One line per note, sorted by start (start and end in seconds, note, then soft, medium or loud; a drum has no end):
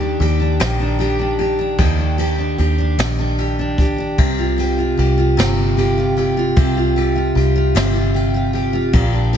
0.00 0.16 D#2 loud
0.00 0.59 D#3 medium
0.00 0.38 D4 medium
0.00 0.19 G4 medium
0.20 0.58 D#2 loud
0.20 0.98 G4 medium
0.20 ride soft
0.40 0.78 D4 medium
0.60 1.75 A#1 medium
0.60 1.77 D#3 medium
0.60 snare medium
0.60 ride medium
0.79 1.18 D4 medium
0.99 1.38 G4 medium
0.99 ride soft
1.19 1.58 D4 medium
1.39 2.18 G4 medium
1.39 ride soft
1.59 1.97 D4 medium
1.78 2.54 D#2 loud
1.78 2.97 D#3 medium
1.78 kick loud
1.78 ride medium
1.98 2.37 D4 medium
2.18 2.58 G4 medium
2.18 ride soft
2.38 2.77 D4 medium
2.58 2.96 D#2 medium
2.58 3.38 G4 medium
2.58 ride soft
2.78 3.17 D4 medium
2.98 4.14 A#1 medium
2.98 4.18 D#3 medium
2.98 snare medium
2.98 ride medium
3.19 3.58 D4 medium
3.38 3.79 G4 medium
3.38 ride soft
3.59 3.97 D4 medium
3.78 4.42 G4 medium
3.78 kick medium
3.78 ride soft
3.98 4.26 D4 soft
4.18 4.94 C2 medium
4.18 5.36 C3 medium
4.18 kick medium
4.18 ride medium
4.39 4.78 F4 medium
4.58 4.97 G4 medium
4.58 ride soft
4.78 5.17 F4 soft
4.97 5.36 C2 loud
4.97 5.77 G4 medium
4.97 ride soft
5.18 5.57 F4 medium
5.37 6.53 G1 medium
5.37 6.55 C3 medium
5.37 snare medium
5.37 ride medium
5.57 5.97 F4 medium
5.77 6.16 G4 medium
5.77 ride soft
5.98 6.37 F4 soft
6.17 6.96 G4 medium
6.17 ride soft
6.37 6.76 F4 medium
6.56 7.32 C2 loud
6.56 7.74 C3 medium
6.56 kick loud
6.56 ride medium
6.77 7.15 F4 medium
6.96 7.35 G4 medium
6.96 ride soft
7.16 7.55 F4 medium
7.35 7.73 C2 medium
7.35 8.14 G4 medium
7.35 ride soft
7.56 7.93 F4 medium
7.75 8.89 G1 medium
7.75 9.01 C3 medium
7.75 snare loud
7.75 ride medium
7.94 8.34 F4 medium
8.14 8.53 G4 medium
8.14 ride soft
8.34 8.73 F4 medium
8.53 9.33 G4 medium
8.53 ride soft
8.73 9.13 F4 medium
8.93 9.37 A#1 loud
8.93 9.37 A#2 medium
8.93 kick loud
8.93 ride medium
9.13 9.37 D4 medium
9.33 9.37 G4 medium
9.33 ride soft